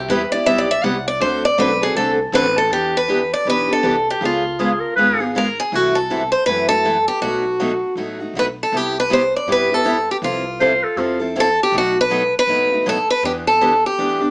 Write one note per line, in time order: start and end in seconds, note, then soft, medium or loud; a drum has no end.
0.00 0.10 G4 medium
0.09 0.30 E2 loud
0.09 0.21 C3 medium
0.09 0.21 G3 loud
0.09 0.21 B3 loud
0.09 0.21 E4 loud
0.09 0.21 G4 loud
0.09 0.31 B4 medium
0.31 0.45 B3 medium
0.31 0.46 E4 medium
0.31 0.46 G4 medium
0.31 0.46 D5 medium
0.31 muted upright bass stroke soft
0.46 0.83 B1 medium
0.46 0.67 C3 medium
0.46 0.67 G3 medium
0.46 0.67 B3 medium
0.46 0.68 E4 medium
0.46 0.68 G4 medium
0.46 0.59 E5 loud
0.58 0.71 D5 medium
0.71 0.84 E5 loud
0.83 1.20 C2 loud
0.83 0.95 C3 medium
0.83 0.95 G3 loud
0.83 0.95 B3 medium
0.83 0.95 E4 medium
0.83 0.96 G4 medium
0.83 1.06 F#5 medium
1.08 1.21 D5 medium
1.20 1.57 D2 loud
1.20 1.42 D3 medium
1.20 1.42 A3 medium
1.20 1.42 C4 medium
1.20 1.43 F#4 medium
1.20 1.43 A4 medium
1.20 1.44 C5 medium
1.45 1.59 D5 medium
1.58 1.95 B1 loud
1.58 1.70 D3 medium
1.58 1.70 A3 loud
1.58 1.70 C4 loud
1.58 1.70 F#4 loud
1.58 1.70 A4 loud
1.58 1.82 B4 medium
1.82 1.96 C4 soft
1.82 1.97 F#4 medium
1.82 1.96 G#4 medium
1.82 1.96 A4 medium
1.95 2.32 C2 medium
1.95 2.17 D3 medium
1.95 2.18 A3 medium
1.95 2.17 C4 medium
1.95 2.18 F#4 medium
1.95 2.10 A4 medium
1.95 2.18 A4 medium
2.32 2.70 A1 loud
2.32 2.45 D3 loud
2.32 2.45 A3 loud
2.32 2.45 C4 loud
2.32 2.45 F#4 loud
2.32 2.45 A4 medium
2.32 2.56 B4 loud
2.58 2.71 A4 medium
2.70 3.31 E2 medium
2.70 2.92 E3 soft
2.70 2.92 B3 medium
2.70 2.93 D4 medium
2.70 2.93 G4 medium
2.70 2.96 G4 medium
2.97 3.31 B4 medium
3.08 3.20 E3 medium
3.08 3.20 B3 medium
3.08 3.20 D4 medium
3.08 3.20 G4 medium
3.33 3.48 D5 medium
3.45 3.78 B1 medium
3.45 3.67 E3 medium
3.45 3.68 B3 medium
3.45 3.68 D4 medium
3.45 3.66 G4 medium
3.50 3.72 B4 medium
3.68 3.82 B3 soft
3.68 3.83 D4 soft
3.68 3.83 G4 medium
3.73 4.10 A4 medium
3.83 4.16 C2 medium
3.83 3.95 E3 medium
3.83 3.95 B3 medium
3.83 3.95 D4 medium
3.83 3.95 G4 medium
4.10 4.24 G4 medium
4.21 4.81 C#2 medium
4.21 4.42 C#3 medium
4.21 4.42 G#3 medium
4.21 4.43 B3 medium
4.21 4.43 F4 medium
4.21 4.43 G#4 medium
4.25 4.95 F4 medium
4.59 4.70 C#3 medium
4.59 4.71 G#3 medium
4.59 4.71 B3 loud
4.59 4.71 F4 medium
4.59 4.81 G#4 medium
4.59 4.71 G#4 medium
4.80 4.95 A#4 medium
4.96 5.57 G#1 medium
4.96 5.18 C#3 medium
4.96 5.18 G#3 medium
4.96 5.19 B3 medium
4.96 5.19 F4 medium
4.96 5.19 G#4 medium
4.96 5.25 B4 medium
5.20 5.35 B3 soft
5.20 5.34 F4 soft
5.20 5.34 G#4 soft
5.35 5.46 C#3 medium
5.35 5.46 G#3 medium
5.35 5.46 B3 medium
5.35 5.46 F4 medium
5.35 5.47 G#4 medium
5.35 5.58 A#4 medium
5.60 5.75 G#4 medium
5.72 6.32 C2 medium
5.72 5.93 C3 medium
5.72 5.93 E3 medium
5.72 5.94 A3 medium
5.72 5.94 E4 medium
5.72 5.94 F#4 medium
5.72 5.97 F#4 medium
5.95 6.31 A4 medium
6.10 6.21 C3 medium
6.10 6.21 E3 medium
6.10 6.21 A3 medium
6.10 6.21 E4 medium
6.10 6.21 F#4 medium
6.32 6.46 C5 medium
6.46 7.07 F#2 medium
6.46 6.68 C3 medium
6.46 6.68 E3 medium
6.46 6.68 A3 medium
6.46 6.69 E4 medium
6.46 6.69 F#4 medium
6.46 6.68 B4 medium
6.69 6.84 A3 soft
6.69 6.84 E4 soft
6.69 6.84 F#4 medium
6.69 7.04 A4 medium
6.84 6.96 C3 medium
6.84 6.96 E3 medium
6.84 6.96 A3 medium
6.84 6.96 E4 medium
6.84 6.96 F#4 medium
7.08 7.21 G4 medium
7.21 7.82 B1 medium
7.21 7.43 B2 medium
7.21 7.43 F#3 medium
7.21 7.44 A3 medium
7.21 7.44 D#4 medium
7.21 7.93 F#4 medium
7.21 7.44 F#4 medium
7.60 7.71 B2 medium
7.60 7.71 F#3 medium
7.60 7.71 A3 medium
7.60 7.71 D#4 medium
7.60 7.72 F#4 loud
7.95 8.28 A1 medium
7.95 8.18 B2 medium
7.95 8.18 F#3 medium
7.95 8.18 A3 medium
7.95 8.19 D#4 medium
7.95 8.18 F#4 medium
8.20 8.35 A3 soft
8.20 8.35 D#4 soft
8.20 8.34 F#4 soft
8.34 8.66 B1 medium
8.34 8.46 B2 medium
8.34 8.46 F#3 medium
8.34 8.47 A3 medium
8.34 8.47 D#4 medium
8.34 8.47 F#4 medium
8.39 8.45 B4 medium
8.63 8.77 A4 medium
8.72 9.32 C2 medium
8.72 8.93 C3 medium
8.72 8.93 G3 medium
8.72 8.94 B3 medium
8.72 8.94 E4 medium
8.72 8.94 G4 medium
8.77 8.98 G4 medium
9.00 9.12 B4 medium
9.10 9.21 C3 medium
9.10 9.21 G3 medium
9.10 9.21 B3 medium
9.10 9.21 E4 medium
9.10 9.22 G4 medium
9.10 9.33 C5 medium
9.36 9.48 D5 medium
9.47 10.07 G2 medium
9.47 9.68 C3 medium
9.47 9.68 G3 medium
9.47 9.68 B3 medium
9.47 9.69 E4 medium
9.47 9.69 G4 medium
9.52 9.74 B4 medium
9.71 9.84 B3 soft
9.71 9.84 E4 soft
9.71 9.85 G4 soft
9.71 10.11 A4 loud
9.84 9.96 C3 medium
9.84 9.96 G3 medium
9.84 9.96 B3 medium
9.84 9.96 E4 medium
9.84 9.96 G4 medium
10.11 10.16 G4 medium
10.22 10.82 C2 medium
10.22 10.43 C3 medium
10.22 10.43 F3 medium
10.22 10.44 C4 medium
10.22 10.44 E4 medium
10.22 10.99 F4 medium
10.22 10.44 A4 medium
10.60 10.71 C3 medium
10.60 10.71 F3 medium
10.60 10.72 C4 medium
10.60 10.72 E4 medium
10.60 10.72 A4 medium
10.60 10.85 C5 loud
10.83 11.00 A4 medium
10.96 11.57 F2 medium
10.96 11.18 C3 medium
10.96 11.18 F3 medium
10.96 11.19 C4 medium
10.96 11.18 E4 medium
10.96 11.28 F4 medium
10.96 11.18 A4 medium
11.19 11.35 C4 soft
11.19 11.35 E4 soft
11.19 11.34 A4 soft
11.36 11.46 C3 medium
11.36 11.47 F3 medium
11.36 11.47 C4 medium
11.36 11.47 E4 medium
11.36 11.47 A4 medium
11.40 11.59 A4 medium
11.63 11.76 G4 medium
11.72 12.32 B1 medium
11.72 11.94 B2 medium
11.72 11.94 F#3 medium
11.72 11.94 A3 medium
11.72 11.94 D#4 medium
11.72 11.94 F#4 medium
11.78 11.97 F#4 medium
12.01 12.33 B4 medium
12.10 12.21 B2 medium
12.10 12.22 F#3 medium
12.10 12.22 A3 loud
12.10 12.22 D#4 medium
12.10 12.22 F#4 medium
12.39 12.89 B4 medium
12.47 13.08 F#1 medium
12.47 12.69 B2 medium
12.47 12.69 F#3 medium
12.47 12.69 A3 medium
12.47 12.70 D#4 medium
12.47 12.70 F#4 medium
12.72 12.85 A3 soft
12.72 12.86 D#4 soft
12.72 12.85 F#4 medium
12.86 12.97 B2 medium
12.86 12.97 F#3 medium
12.86 12.97 A3 medium
12.86 12.97 D#4 medium
12.86 12.97 F#4 medium
12.86 13.09 A4 medium
13.10 13.23 B4 medium
13.23 13.83 E2 loud
13.23 13.44 E3 medium
13.23 13.44 B3 medium
13.23 13.44 D4 medium
13.23 13.45 G4 medium
13.23 13.31 G4 medium
13.47 13.86 A4 medium
13.61 13.72 E3 medium
13.61 13.72 B3 medium
13.61 13.72 D4 medium
13.61 13.73 G4 medium
13.86 14.20 G4 medium
13.98 14.30 D2 medium
13.98 14.19 E3 medium
13.98 14.19 B3 medium
13.98 14.20 D4 medium
13.98 14.19 G4 medium
14.21 14.30 B3 soft
14.21 14.30 D4 soft
14.21 14.30 G4 soft